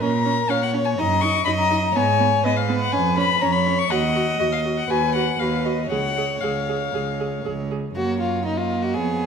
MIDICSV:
0, 0, Header, 1, 5, 480
1, 0, Start_track
1, 0, Key_signature, 6, "major"
1, 0, Tempo, 483092
1, 19, Time_signature, 4, 2, 24, 8
1, 2899, Tempo, 493827
1, 4819, Tempo, 510638
1, 7699, Tempo, 495868
1, 8960, End_track
2, 0, Start_track
2, 0, Title_t, "Violin"
2, 0, Program_c, 0, 40
2, 8, Note_on_c, 0, 82, 84
2, 498, Note_on_c, 0, 77, 75
2, 513, Note_off_c, 0, 82, 0
2, 614, Note_off_c, 0, 77, 0
2, 620, Note_on_c, 0, 78, 77
2, 700, Note_off_c, 0, 78, 0
2, 840, Note_on_c, 0, 80, 76
2, 891, Note_off_c, 0, 80, 0
2, 973, Note_on_c, 0, 82, 83
2, 1204, Note_on_c, 0, 85, 97
2, 1219, Note_off_c, 0, 82, 0
2, 1435, Note_off_c, 0, 85, 0
2, 1441, Note_on_c, 0, 83, 81
2, 1491, Note_off_c, 0, 83, 0
2, 1572, Note_on_c, 0, 82, 74
2, 1809, Note_off_c, 0, 82, 0
2, 1830, Note_on_c, 0, 82, 83
2, 1942, Note_on_c, 0, 80, 90
2, 1957, Note_off_c, 0, 82, 0
2, 2422, Note_off_c, 0, 80, 0
2, 2438, Note_on_c, 0, 75, 78
2, 2548, Note_on_c, 0, 77, 66
2, 2563, Note_off_c, 0, 75, 0
2, 2783, Note_off_c, 0, 77, 0
2, 2792, Note_on_c, 0, 78, 73
2, 2901, Note_on_c, 0, 80, 81
2, 2915, Note_off_c, 0, 78, 0
2, 3137, Note_off_c, 0, 80, 0
2, 3151, Note_on_c, 0, 83, 93
2, 3379, Note_on_c, 0, 82, 82
2, 3394, Note_off_c, 0, 83, 0
2, 3487, Note_on_c, 0, 83, 81
2, 3502, Note_off_c, 0, 82, 0
2, 3738, Note_on_c, 0, 85, 91
2, 3753, Note_off_c, 0, 83, 0
2, 3854, Note_on_c, 0, 78, 76
2, 3869, Note_off_c, 0, 85, 0
2, 4328, Note_off_c, 0, 78, 0
2, 4334, Note_on_c, 0, 75, 71
2, 4383, Note_off_c, 0, 75, 0
2, 4458, Note_on_c, 0, 77, 69
2, 4535, Note_off_c, 0, 77, 0
2, 4706, Note_on_c, 0, 78, 69
2, 4826, Note_on_c, 0, 80, 84
2, 4840, Note_off_c, 0, 78, 0
2, 5053, Note_off_c, 0, 80, 0
2, 5059, Note_on_c, 0, 78, 76
2, 5288, Note_on_c, 0, 77, 64
2, 5302, Note_off_c, 0, 78, 0
2, 5526, Note_on_c, 0, 75, 56
2, 5540, Note_off_c, 0, 77, 0
2, 5762, Note_off_c, 0, 75, 0
2, 5768, Note_on_c, 0, 78, 80
2, 6239, Note_on_c, 0, 77, 60
2, 6253, Note_off_c, 0, 78, 0
2, 7209, Note_off_c, 0, 77, 0
2, 7690, Note_on_c, 0, 73, 40
2, 8176, Note_on_c, 0, 75, 43
2, 8191, Note_off_c, 0, 73, 0
2, 8660, Note_on_c, 0, 73, 49
2, 8675, Note_off_c, 0, 75, 0
2, 8960, Note_off_c, 0, 73, 0
2, 8960, End_track
3, 0, Start_track
3, 0, Title_t, "Violin"
3, 0, Program_c, 1, 40
3, 20, Note_on_c, 1, 70, 60
3, 507, Note_on_c, 1, 73, 70
3, 522, Note_off_c, 1, 70, 0
3, 982, Note_on_c, 1, 75, 71
3, 997, Note_off_c, 1, 73, 0
3, 1445, Note_off_c, 1, 75, 0
3, 1451, Note_on_c, 1, 75, 73
3, 1925, Note_off_c, 1, 75, 0
3, 1937, Note_on_c, 1, 73, 65
3, 2423, Note_on_c, 1, 71, 65
3, 2438, Note_off_c, 1, 73, 0
3, 3381, Note_on_c, 1, 73, 67
3, 3395, Note_off_c, 1, 71, 0
3, 3855, Note_off_c, 1, 73, 0
3, 3861, Note_on_c, 1, 75, 73
3, 4800, Note_off_c, 1, 75, 0
3, 4824, Note_on_c, 1, 71, 64
3, 5282, Note_off_c, 1, 71, 0
3, 5287, Note_on_c, 1, 71, 58
3, 5755, Note_off_c, 1, 71, 0
3, 5760, Note_on_c, 1, 73, 52
3, 7421, Note_off_c, 1, 73, 0
3, 7696, Note_on_c, 1, 66, 59
3, 7922, Note_off_c, 1, 66, 0
3, 7937, Note_on_c, 1, 65, 55
3, 8175, Note_off_c, 1, 65, 0
3, 8181, Note_on_c, 1, 63, 62
3, 8297, Note_on_c, 1, 65, 53
3, 8311, Note_off_c, 1, 63, 0
3, 8538, Note_on_c, 1, 66, 57
3, 8553, Note_off_c, 1, 65, 0
3, 8652, Note_on_c, 1, 68, 62
3, 8667, Note_off_c, 1, 66, 0
3, 8960, Note_off_c, 1, 68, 0
3, 8960, End_track
4, 0, Start_track
4, 0, Title_t, "Viola"
4, 0, Program_c, 2, 41
4, 18, Note_on_c, 2, 61, 55
4, 98, Note_off_c, 2, 61, 0
4, 254, Note_on_c, 2, 61, 47
4, 334, Note_off_c, 2, 61, 0
4, 488, Note_on_c, 2, 61, 49
4, 568, Note_off_c, 2, 61, 0
4, 726, Note_on_c, 2, 61, 48
4, 806, Note_off_c, 2, 61, 0
4, 976, Note_on_c, 2, 63, 53
4, 1055, Note_off_c, 2, 63, 0
4, 1217, Note_on_c, 2, 63, 56
4, 1296, Note_off_c, 2, 63, 0
4, 1454, Note_on_c, 2, 63, 54
4, 1533, Note_off_c, 2, 63, 0
4, 1692, Note_on_c, 2, 63, 52
4, 1772, Note_off_c, 2, 63, 0
4, 1944, Note_on_c, 2, 59, 55
4, 2023, Note_off_c, 2, 59, 0
4, 2187, Note_on_c, 2, 59, 49
4, 2266, Note_off_c, 2, 59, 0
4, 2430, Note_on_c, 2, 59, 57
4, 2510, Note_off_c, 2, 59, 0
4, 2669, Note_on_c, 2, 59, 53
4, 2749, Note_off_c, 2, 59, 0
4, 2905, Note_on_c, 2, 61, 51
4, 2982, Note_off_c, 2, 61, 0
4, 3142, Note_on_c, 2, 61, 54
4, 3220, Note_off_c, 2, 61, 0
4, 3388, Note_on_c, 2, 61, 47
4, 3466, Note_off_c, 2, 61, 0
4, 3621, Note_on_c, 2, 61, 41
4, 3699, Note_off_c, 2, 61, 0
4, 3859, Note_on_c, 2, 66, 54
4, 3936, Note_off_c, 2, 66, 0
4, 4101, Note_on_c, 2, 66, 45
4, 4178, Note_off_c, 2, 66, 0
4, 4333, Note_on_c, 2, 66, 49
4, 4411, Note_off_c, 2, 66, 0
4, 4581, Note_on_c, 2, 66, 41
4, 4658, Note_off_c, 2, 66, 0
4, 4823, Note_on_c, 2, 66, 49
4, 4899, Note_off_c, 2, 66, 0
4, 5058, Note_on_c, 2, 66, 46
4, 5133, Note_off_c, 2, 66, 0
4, 5297, Note_on_c, 2, 66, 46
4, 5372, Note_off_c, 2, 66, 0
4, 5524, Note_on_c, 2, 66, 40
4, 5599, Note_off_c, 2, 66, 0
4, 5771, Note_on_c, 2, 68, 44
4, 5846, Note_off_c, 2, 68, 0
4, 6024, Note_on_c, 2, 68, 38
4, 6100, Note_off_c, 2, 68, 0
4, 6262, Note_on_c, 2, 68, 46
4, 6337, Note_off_c, 2, 68, 0
4, 6505, Note_on_c, 2, 68, 38
4, 6580, Note_off_c, 2, 68, 0
4, 6744, Note_on_c, 2, 68, 43
4, 6819, Note_off_c, 2, 68, 0
4, 6988, Note_on_c, 2, 68, 43
4, 7064, Note_off_c, 2, 68, 0
4, 7224, Note_on_c, 2, 68, 41
4, 7299, Note_off_c, 2, 68, 0
4, 7465, Note_on_c, 2, 68, 37
4, 7540, Note_off_c, 2, 68, 0
4, 7708, Note_on_c, 2, 58, 39
4, 8153, Note_off_c, 2, 58, 0
4, 8190, Note_on_c, 2, 58, 44
4, 8671, Note_on_c, 2, 59, 40
4, 8686, Note_off_c, 2, 58, 0
4, 8960, Note_off_c, 2, 59, 0
4, 8960, End_track
5, 0, Start_track
5, 0, Title_t, "Cello"
5, 0, Program_c, 3, 42
5, 26, Note_on_c, 3, 46, 63
5, 447, Note_off_c, 3, 46, 0
5, 506, Note_on_c, 3, 46, 55
5, 923, Note_off_c, 3, 46, 0
5, 984, Note_on_c, 3, 42, 73
5, 1399, Note_off_c, 3, 42, 0
5, 1460, Note_on_c, 3, 42, 71
5, 1882, Note_off_c, 3, 42, 0
5, 1942, Note_on_c, 3, 44, 63
5, 2365, Note_off_c, 3, 44, 0
5, 2422, Note_on_c, 3, 44, 59
5, 2844, Note_off_c, 3, 44, 0
5, 2907, Note_on_c, 3, 41, 63
5, 3324, Note_off_c, 3, 41, 0
5, 3386, Note_on_c, 3, 41, 70
5, 3807, Note_off_c, 3, 41, 0
5, 3865, Note_on_c, 3, 39, 69
5, 4285, Note_off_c, 3, 39, 0
5, 4344, Note_on_c, 3, 39, 51
5, 4765, Note_off_c, 3, 39, 0
5, 4818, Note_on_c, 3, 39, 64
5, 5232, Note_off_c, 3, 39, 0
5, 5291, Note_on_c, 3, 39, 60
5, 5713, Note_off_c, 3, 39, 0
5, 5777, Note_on_c, 3, 37, 52
5, 6203, Note_off_c, 3, 37, 0
5, 6263, Note_on_c, 3, 37, 46
5, 6684, Note_off_c, 3, 37, 0
5, 6743, Note_on_c, 3, 37, 50
5, 7164, Note_off_c, 3, 37, 0
5, 7227, Note_on_c, 3, 37, 61
5, 7647, Note_off_c, 3, 37, 0
5, 7707, Note_on_c, 3, 42, 44
5, 8667, Note_on_c, 3, 41, 50
5, 8682, Note_off_c, 3, 42, 0
5, 8960, Note_off_c, 3, 41, 0
5, 8960, End_track
0, 0, End_of_file